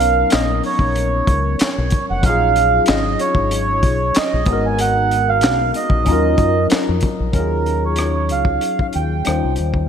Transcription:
0.00 0.23 B1 medium
0.00 2.18 F#3 medium
0.00 2.19 B3 medium
0.00 2.20 C#4 medium
0.00 2.24 D#4 medium
0.00 2.22 A#4 medium
0.00 0.34 F5 loud
0.00 closed hi-hat medium
0.30 0.60 A#1 medium
0.30 0.62 D#5 medium
0.30 snare loud
0.30 clap medium
0.30 closed hi-hat medium
0.63 1.56 C#5 medium
0.63 open hi-hat soft
0.79 1.20 A#1 medium
0.79 kick medium
0.96 closed hi-hat medium
1.27 1.55 C#2 medium
1.27 kick loud
1.27 closed hi-hat medium
1.59 2.06 C#5 medium
1.59 muted fingered electric bass stroke soft
1.59 snare loud
1.59 clap medium
1.59 closed hi-hat medium
1.78 1.90 B1 medium
1.90 kick medium
1.90 closed hi-hat medium
2.10 2.22 F1 medium
2.10 2.24 F#5 medium
2.22 2.78 A#1 loud
2.22 4.42 F#3 medium
2.22 4.42 C#4 medium
2.22 4.44 D#4 medium
2.22 2.84 F5 loud
2.22 kick loud
2.22 closed hi-hat medium
2.27 4.45 F4 medium
2.27 4.46 G#4 medium
2.56 closed hi-hat medium
2.86 3.15 G#1 medium
2.86 3.20 D#5 medium
2.86 snare loud
2.86 clap medium
2.86 closed hi-hat medium
3.19 4.18 C#5 medium
3.19 closed hi-hat medium
3.35 3.84 G#1 medium
3.35 kick medium
3.51 closed hi-hat medium
3.83 4.11 B1 medium
3.83 kick medium
3.83 closed hi-hat medium
4.14 4.66 D#5 loud
4.14 muted fingered electric bass stroke soft
4.14 snare loud
4.14 clap medium
4.14 closed hi-hat loud
4.34 4.45 A#1 medium
4.45 5.44 G#1 loud
4.45 6.02 G#3 medium
4.45 6.03 B3 medium
4.45 kick loud
4.45 closed hi-hat medium
4.49 6.04 D#4 medium
4.49 6.05 F#4 medium
4.49 6.06 A#4 medium
4.66 4.80 G#5 medium
4.79 5.30 F#5 loud
4.79 closed hi-hat medium
5.11 closed hi-hat medium
5.29 5.72 F5 loud
5.41 5.71 B1 medium
5.41 snare loud
5.41 clap medium
5.41 closed hi-hat medium
5.74 6.67 D#5 medium
5.74 closed hi-hat medium
5.90 6.04 A#1 medium
5.90 kick medium
6.04 6.34 D#2 loud
6.04 7.30 F#3 medium
6.04 7.31 C#4 medium
6.04 7.32 D#4 medium
6.04 kick medium
6.04 closed hi-hat medium
6.10 7.33 F4 medium
6.10 7.34 A#4 medium
6.38 6.66 F#2 medium
6.38 kick medium
6.38 closed hi-hat medium
6.70 muted fingered electric bass stroke soft
6.70 snare loud
6.70 clap medium
6.70 closed hi-hat medium
6.89 7.01 F2 medium
7.01 kick medium
7.01 closed hi-hat medium
7.20 7.32 A#1 medium
7.32 8.32 D#2 medium
7.32 9.20 F#3 soft
7.32 9.21 C#4 soft
7.32 9.22 D#4 soft
7.32 7.85 A#4 medium
7.32 kick medium
7.32 closed hi-hat medium
7.38 9.23 F4 soft
7.38 9.24 G#4 medium
7.66 closed hi-hat medium
7.85 8.32 C#5 medium
7.96 cross-stick medium
7.96 closed hi-hat medium
8.29 8.58 C#2 medium
8.29 8.79 F5 medium
8.29 closed hi-hat medium
8.45 kick medium
8.61 closed hi-hat medium
8.79 8.87 F5 medium
8.79 kick medium
8.93 9.22 D#2 medium
8.93 9.54 G5 medium
8.93 closed hi-hat medium
9.24 9.41 D#2 medium
9.24 9.89 G3 medium
9.24 9.89 C#4 soft
9.24 9.89 D#4 soft
9.24 9.89 F4 soft
9.24 9.89 C5 medium
9.24 cross-stick medium
9.24 closed hi-hat medium
9.44 9.56 C2 medium
9.56 9.86 D#2 medium
9.56 closed hi-hat soft
9.74 kick medium

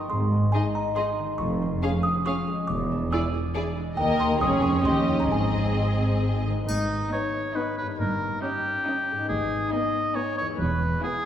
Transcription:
0.00 0.12 G2 soft
0.00 0.12 G3 soft
0.00 0.12 A#3 soft
0.00 0.53 D#4 soft
0.00 0.74 D#5 soft
0.10 0.47 G#1 medium
0.10 1.41 G#2 soft
0.10 0.46 G#2 medium
0.10 0.50 C6 medium
0.32 0.96 G#3 soft
0.52 0.62 D#4 soft
0.52 1.41 D#4 soft
0.52 0.61 G#4 soft
0.52 0.62 D#5 soft
0.52 0.73 G#5 medium
0.75 1.42 D#5 soft
0.75 0.95 A#5 medium
0.96 2.46 G#3 soft
0.96 1.05 D#4 soft
0.96 1.04 G#4 soft
0.96 1.05 D#5 soft
0.96 1.36 C6 medium
1.19 1.42 D#3 soft
1.38 1.75 F1 medium
1.38 1.75 F2 medium
1.38 2.71 F3 soft
1.38 1.99 C#6 medium
1.62 2.24 F4 soft
1.83 1.91 C#4 soft
1.83 1.91 G#4 soft
1.83 2.71 C#5 soft
1.83 1.91 F5 soft
2.03 3.32 G#4 soft
2.03 2.24 D#6 medium
2.26 2.35 C#4 soft
2.26 2.71 F4 soft
2.26 2.34 G#4 soft
2.26 2.34 F5 soft
2.26 2.66 C#6 medium
2.47 3.75 G#3 soft
2.67 3.05 E1 medium
2.67 3.05 E2 medium
2.67 4.00 E3 medium
2.67 3.08 D6 medium
2.91 3.54 D4 soft
3.12 3.21 E4 soft
3.12 3.20 G#4 soft
3.12 4.00 D5 soft
3.12 3.21 D5 soft
3.12 3.32 E6 medium
3.34 4.00 G#4 soft
3.55 4.00 D4 soft
3.55 3.65 E4 soft
3.55 3.63 G#4 soft
3.55 3.63 D5 soft
3.77 4.00 G#3 soft
3.97 4.39 D#2 medium
3.97 4.43 D#3 soft
3.97 4.39 A#3 medium
3.97 4.39 A#4 soft
3.97 4.38 D#5 medium
3.97 4.18 G5 medium
4.20 4.43 D#4 soft
4.20 4.43 A#4 soft
4.20 4.40 C6 medium
4.41 4.86 F1 soft
4.41 4.85 F2 soft
4.41 4.87 F3 soft
4.41 4.85 C#4 soft
4.41 4.85 G#4 soft
4.41 4.86 C#5 soft
4.41 4.62 D#6 medium
4.62 5.32 C#4 soft
4.62 4.83 C#6 soft
4.85 5.31 D#2 soft
4.85 5.32 D#3 soft
4.85 5.30 C#4 soft
4.85 5.30 G4 soft
4.85 5.29 D#5 soft
4.85 5.17 C6 medium
5.07 5.76 D#4 soft
5.07 5.33 C#5 soft
5.20 5.30 A#5 medium
5.30 6.45 G#1 soft
5.30 6.49 G#2 soft
5.30 6.45 G#2 soft
5.30 6.48 C4 soft
5.30 6.45 G#4 soft
5.30 6.45 D#5 soft
5.30 6.42 G#5 medium
5.54 6.22 G#3 soft
5.77 6.58 D#4 soft
6.00 6.70 C5 soft
6.23 6.54 G#3 soft
6.45 6.70 D#3 soft
6.50 7.93 G#2 soft
6.55 7.95 G#3 soft
6.59 7.90 D#4 soft
6.64 7.03 G#1 medium
6.64 7.09 D#4 medium
6.64 7.99 B4 soft
6.68 7.03 G#2 medium
6.68 triangle soft
7.12 7.45 B3 soft
7.12 7.45 D#4 soft
7.12 7.57 C#5 medium
7.12 7.45 D#5 soft
7.55 7.88 B3 soft
7.55 7.89 D#4 soft
7.55 7.77 B4 medium
7.55 7.88 D#5 soft
7.78 9.23 G2 soft
7.78 7.88 B4 medium
7.86 9.25 A#3 soft
7.91 9.19 D#4 soft
7.95 9.30 C#5 soft
8.00 8.34 G1 medium
8.00 8.34 G2 medium
8.00 8.41 A#4 medium
8.42 8.75 C#4 soft
8.42 8.75 D#4 soft
8.42 9.28 G4 medium
8.42 8.75 D#5 soft
8.86 9.19 C#4 soft
8.86 9.19 D#4 soft
8.86 9.19 D#5 soft
9.12 10.52 G#2 soft
9.16 10.44 G#3 soft
9.21 10.56 D#4 soft
9.25 9.71 G#4 medium
9.25 10.54 B4 soft
9.30 9.64 G#1 medium
9.30 9.64 G#2 medium
9.72 10.05 B3 soft
9.72 10.05 D#4 soft
9.72 10.17 D#5 medium
9.72 10.05 G#5 soft
10.15 10.48 B3 soft
10.15 10.48 D#4 soft
10.15 10.37 C#5 medium
10.15 10.49 G#5 soft
10.38 11.25 E2 soft
10.38 10.47 C#5 medium
10.46 11.25 G#3 soft
10.50 11.25 E4 soft
10.55 11.25 B4 soft
10.55 11.01 B4 medium
10.59 10.94 E1 medium
10.59 10.93 E2 medium
11.02 11.25 B3 soft
11.02 11.25 E4 medium
11.02 11.25 G#4 medium
11.02 11.25 G#5 soft

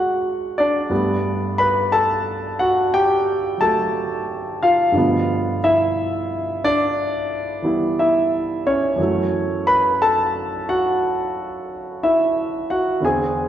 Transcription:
0.00 0.90 G#2 soft
0.00 0.91 F#3 soft
0.00 0.90 G#3 soft
0.00 0.91 C4 soft
0.00 0.58 D4 soft
0.00 0.54 F#4 medium
0.00 0.60 F#5 medium
0.58 1.55 D4 medium
0.58 1.54 D5 medium
0.90 4.91 G2 medium
0.90 4.94 G3 soft
0.90 3.60 A3 soft
0.90 4.95 B3 medium
1.58 1.90 B4 medium
1.58 1.93 B5 loud
1.92 2.07 A4 medium
1.92 2.07 A5 medium
2.59 2.91 F#4 medium
2.59 2.94 F#5 medium
2.94 3.56 G4 medium
2.94 3.56 G5 medium
3.58 4.94 F#3 soft
3.58 4.95 A3 soft
3.58 4.57 A4 medium
3.58 4.64 A5 medium
4.63 5.59 F4 medium
4.63 5.58 F5 medium
4.92 8.97 G2 medium
4.92 8.98 B2 soft
4.92 8.98 D3 soft
4.92 8.99 F3 soft
4.96 8.99 A3 soft
4.96 7.63 B3 medium
5.64 6.60 E4 medium
5.64 6.67 E5 medium
6.64 7.94 D4 medium
6.64 8.02 D5 loud
7.62 8.97 E3 soft
7.62 8.98 G3 soft
7.62 8.99 B3 soft
7.62 7.98 E4 soft
7.99 8.62 E4 medium
7.99 8.67 E5 medium
8.67 9.62 C#4 medium
8.67 9.69 C#5 medium
8.96 13.01 F#2 soft
8.96 13.02 E3 soft
8.96 13.03 F#3 soft
9.02 13.04 A3 medium
9.67 9.98 B4 medium
9.67 10.01 B5 medium
10.02 10.17 A4 medium
10.02 10.17 A5 medium
10.69 11.98 F#4 medium
10.69 12.07 F#5 medium
12.03 12.65 E4 medium
12.03 12.65 E5 medium
12.70 12.78 F#4 medium
12.70 12.78 F#5 medium
13.00 13.48 E2 soft
13.00 13.48 D3 soft
13.05 13.48 C4 medium
13.05 13.48 G#4 medium
13.05 13.48 G#5 medium

